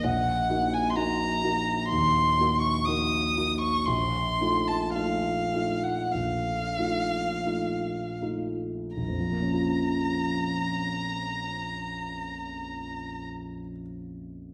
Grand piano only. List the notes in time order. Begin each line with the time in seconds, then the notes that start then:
0.04 A#1
0.49 A#3 D#4 F#4
0.96 A#3 D#4 F#4
1.43 A#3 D#4 F#4
1.91 D#2
2.39 A#3 D#4 F#4
2.87 A#3 D#4 F#4
3.37 A#3 D#4 F#4
3.87 A#1
4.41 A3 D#4 F4
4.95 A3 D#4 F4
5.54 A3 D#4 F4
6.14 A#1
6.78 A3 D#4 F4
7.46 A3 D#4 F4
8.21 A3 D#4 F4
8.97 A#1
9.08 F2
9.19 F3
9.31 A#3
9.42 C#4
9.53 F4